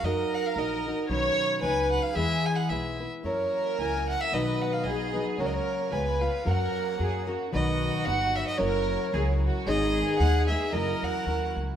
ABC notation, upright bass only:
X:1
M:2/4
L:1/8
Q:"Swing" 1/4=112
K:F#
V:1 name="Upright bass" clef=bass
F,, z A,,,2 | B,,, z C,,2 | =E,, z B,,,2 | F,, z C,,2 |
B,,, z B,,,2 | C,, z C,,2 | F,, z F,,2 | [K:B] B,,,2 =G,,,2 |
F,,,2 C,,2 | G,,,2 D,,2 | F,,, E,, D,, C,, |]